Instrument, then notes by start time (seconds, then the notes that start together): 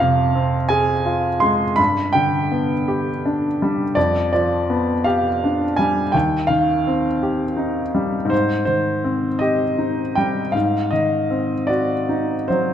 upright piano
Already playing: F2
0.00 C3 F5
0.35 C4
0.69 G#4 G#5
1.06 F4
1.40 G#3 C6
1.76 G2 B5
2.13 D3 G5
2.52 B3
2.88 G4
3.25 D4
3.62 G3
3.95 F2 D5
4.33 F3 D5
4.70 B3
5.04 G4 F5
5.44 D4
5.76 G3 G#5
6.12 D#2 G5
6.47 D#3 F5
6.87 C4
7.23 G4
7.57 D#4
7.95 G3
8.25 G#2
8.30 C5
8.65 D#3 C5
9.04 C4
9.39 G4 D#5
9.78 D#4
10.15 G3 G5
10.52 G#2 F5
10.91 D#3 D#5
11.30 C4
11.67 F#4 D5
12.09 D#4
12.48 F#3 C5